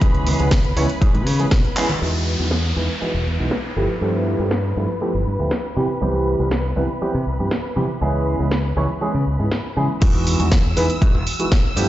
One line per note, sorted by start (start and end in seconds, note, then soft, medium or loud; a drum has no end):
0.00 0.34 C#2 loud
0.00 0.36 E3 medium
0.00 0.36 G#3 medium
0.00 0.36 B3 medium
0.00 0.36 C#4 medium
0.00 0.37 G#4 loud
0.00 2.00 B4 medium
0.00 2.00 B5 medium
0.00 kick loud
0.00 closed hi-hat medium
0.00 tambourine soft
0.15 closed hi-hat soft
0.27 open hi-hat loud
0.27 tambourine medium
0.27 high conga loud
0.39 0.72 C#2 loud
0.39 0.46 E3 medium
0.39 0.46 G#3 medium
0.39 0.47 B3 medium
0.39 0.47 C#4 medium
0.39 0.47 G#4 medium
0.39 closed hi-hat medium
0.39 tambourine medium
0.51 kick loud
0.51 snare loud
0.51 closed hi-hat medium
0.64 closed hi-hat soft
0.64 high conga medium
0.76 0.86 C#2 loud
0.76 0.84 E3 medium
0.76 0.84 G#3 medium
0.76 0.84 B3 medium
0.76 0.84 C#4 medium
0.76 0.84 C#5 loud
0.76 open hi-hat medium
0.76 tambourine medium
0.90 closed hi-hat medium
0.90 tambourine medium
1.01 1.09 E3 loud
1.01 1.09 G#3 medium
1.01 1.09 B3 medium
1.01 1.09 C#4 medium
1.01 1.09 G#4 loud
1.01 kick loud
1.01 closed hi-hat medium
1.14 1.26 G#2 medium
1.14 closed hi-hat soft
1.14 high conga medium
1.26 1.46 C#3 medium
1.26 open hi-hat loud
1.26 tambourine loud
1.39 1.46 E3 medium
1.39 1.46 G#3 medium
1.39 1.47 B3 medium
1.39 1.47 C#4 medium
1.39 1.47 G#4 medium
1.39 closed hi-hat medium
1.39 tambourine medium
1.51 1.61 B2 medium
1.51 kick loud
1.51 snare loud
1.51 closed hi-hat medium
1.51 tambourine soft
1.51 high conga medium
1.65 closed hi-hat soft
1.76 1.84 E3 medium
1.76 1.84 G#3 medium
1.76 1.84 B3 medium
1.76 1.84 C#4 medium
1.76 1.84 G#4 loud
1.76 clap medium
1.76 open hi-hat medium
1.76 tambourine medium
1.89 closed hi-hat medium
1.89 tambourine medium
1.89 high conga medium
2.01 2.34 E2 medium
2.01 2.36 E3 medium
2.01 2.36 G#3 medium
2.01 2.36 B3 medium
2.01 2.36 D#4 medium
2.01 2.37 F#4 medium
2.01 10.03 B4 medium
2.01 10.03 B5 medium
2.01 downlifter medium
2.39 2.72 E2 medium
2.39 2.46 E3 medium
2.39 2.47 G#3 medium
2.39 2.47 B3 medium
2.39 2.47 D#4 medium
2.39 2.47 F#4 medium
2.51 snare loud
2.76 2.86 E2 loud
2.76 2.84 E3 medium
2.76 2.84 G#3 medium
2.76 2.84 B3 medium
2.76 2.84 D#4 medium
2.76 2.84 B4 medium
3.01 3.09 E3 medium
3.01 3.09 G#3 medium
3.01 3.09 B3 medium
3.01 3.09 D#4 medium
3.01 3.09 F#4 loud
3.01 muted fingered electric bass stroke soft
3.14 3.24 E1 medium
3.27 3.36 E2 medium
3.39 3.49 B1 medium
3.39 3.47 E3 medium
3.39 3.47 G#3 medium
3.39 3.47 B3 medium
3.39 3.47 D#4 medium
3.39 3.47 F#4 medium
3.51 snare loud
3.76 3.86 G1 medium
3.76 3.84 F3 medium
3.76 3.84 A3 medium
3.76 3.84 B3 medium
3.76 3.84 E4 medium
3.76 3.84 G4 medium
4.01 4.34 G2 medium
4.01 4.36 F3 medium
4.01 4.36 A3 medium
4.01 4.36 B3 medium
4.01 4.37 E4 medium
4.01 4.37 G4 medium
4.39 4.72 G2 medium
4.39 4.46 F3 medium
4.39 4.47 A3 medium
4.39 4.47 B3 medium
4.39 4.47 E4 medium
4.39 4.47 G4 medium
4.51 snare loud
4.76 4.86 G2 medium
4.76 4.84 F3 medium
4.76 4.84 A3 medium
4.76 4.84 B3 medium
4.76 4.84 E4 medium
4.76 4.84 B4 medium
5.01 5.09 F3 medium
5.01 5.09 A3 medium
5.01 5.09 B3 medium
5.01 5.09 E4 medium
5.01 5.09 G4 loud
5.14 5.24 G1 medium
5.26 5.36 G2 medium
5.39 5.49 D2 medium
5.39 5.46 F3 medium
5.39 5.46 A3 medium
5.39 5.46 B3 medium
5.39 5.46 E4 medium
5.39 5.47 G4 medium
5.51 snare loud
5.76 5.86 C3 medium
5.76 5.84 E3 medium
5.76 5.84 G3 medium
5.76 5.84 B3 medium
5.76 5.84 C4 medium
5.76 5.84 G4 medium
6.01 6.34 C2 loud
6.01 6.36 E3 medium
6.01 6.36 G3 medium
6.01 6.36 B3 medium
6.01 6.37 C4 medium
6.01 6.37 G4 loud
6.39 6.72 C2 medium
6.39 6.46 E3 medium
6.39 6.46 G3 medium
6.39 6.46 B3 medium
6.39 6.47 C4 medium
6.39 6.47 G4 medium
6.51 snare loud
6.76 6.86 C2 loud
6.76 6.84 E3 medium
6.76 6.84 G3 medium
6.76 6.84 B3 medium
6.76 6.84 C4 medium
6.76 6.84 B4 loud
7.01 7.09 E3 medium
7.01 7.09 G3 medium
7.01 7.09 B3 medium
7.01 7.09 C4 medium
7.01 7.09 G4 loud
7.01 muted fingered electric bass stroke soft
7.14 7.24 C3 loud
7.27 7.36 C2 medium
7.39 7.49 G2 medium
7.39 7.46 E3 medium
7.39 7.46 G3 medium
7.39 7.47 B3 medium
7.39 7.47 C4 medium
7.39 7.47 G4 medium
7.51 snare loud
7.76 7.86 C3 medium
7.76 7.84 E3 medium
7.76 7.84 G3 medium
7.76 7.84 B3 medium
7.76 7.84 C4 medium
7.76 7.84 G4 medium
8.01 8.34 C#2 medium
8.01 8.36 E3 medium
8.01 8.36 G#3 medium
8.01 8.36 B3 medium
8.01 8.36 C#4 medium
8.01 8.37 G#4 loud
8.39 8.72 C#2 medium
8.39 8.46 E3 medium
8.39 8.46 G#3 medium
8.39 8.46 B3 medium
8.39 8.47 C#4 medium
8.39 8.47 G#4 medium
8.51 snare loud
8.76 8.86 C#2 loud
8.76 8.84 E3 medium
8.76 8.84 G#3 medium
8.76 8.84 B3 medium
8.76 8.84 C#4 medium
8.76 8.84 C#5 loud
9.01 9.09 E3 loud
9.01 9.09 G#3 medium
9.01 9.09 B3 medium
9.01 9.09 C#4 medium
9.01 9.09 G#4 loud
9.14 9.24 C#3 loud
9.27 9.36 C#2 medium
9.39 9.49 G#2 medium
9.39 9.46 E3 medium
9.39 9.46 G#3 medium
9.39 9.47 B3 medium
9.39 9.47 C#4 medium
9.39 9.47 G#4 medium
9.52 snare loud
9.76 9.86 C#3 medium
9.76 9.84 E3 medium
9.76 9.84 G#3 medium
9.76 9.84 B3 medium
9.76 9.84 C#4 medium
9.76 9.84 G#4 medium
10.01 10.35 E2 loud
10.01 10.36 E3 medium
10.01 10.36 G#3 medium
10.01 10.36 B3 medium
10.01 10.36 D#4 medium
10.01 10.36 F#4 loud
10.01 11.89 E6 medium
10.01 kick loud
10.01 closed hi-hat medium
10.01 crash loud
10.01 shaker soft
10.27 open hi-hat loud
10.27 shaker medium
10.39 10.72 E2 medium
10.39 10.46 E3 medium
10.39 10.46 G#3 medium
10.39 10.46 B3 medium
10.39 10.47 D#4 medium
10.39 10.47 F#4 medium
10.39 closed hi-hat medium
10.39 shaker soft
10.52 kick loud
10.52 snare loud
10.52 closed hi-hat medium
10.52 shaker soft
10.76 10.87 E2 loud
10.76 10.84 E3 medium
10.76 10.84 G#3 medium
10.76 10.84 B3 medium
10.76 10.84 D#4 medium
10.76 10.84 B4 loud
10.76 open hi-hat medium
10.76 shaker medium
10.90 closed hi-hat medium
10.90 shaker soft
11.01 11.09 E3 loud
11.01 11.09 G#3 medium
11.01 11.09 B3 medium
11.01 11.09 D#4 loud
11.01 11.09 F#4 loud
11.01 muted fingered electric bass stroke soft
11.01 kick loud
11.01 closed hi-hat medium
11.01 shaker soft
11.15 11.24 E1 loud
11.27 open hi-hat loud
11.27 shaker medium
11.39 11.46 E3 medium
11.39 11.46 G#3 medium
11.39 11.46 B3 medium
11.39 11.47 D#4 medium
11.39 11.47 F#4 medium
11.39 closed hi-hat medium
11.39 shaker soft
11.52 kick loud
11.52 snare loud
11.52 closed hi-hat medium
11.52 shaker soft
11.76 11.89 G2 medium
11.76 11.84 F3 medium
11.76 11.84 A3 medium
11.76 11.84 B3 medium
11.76 11.84 E4 medium
11.76 11.84 G4 loud
11.76 open hi-hat medium
11.76 shaker medium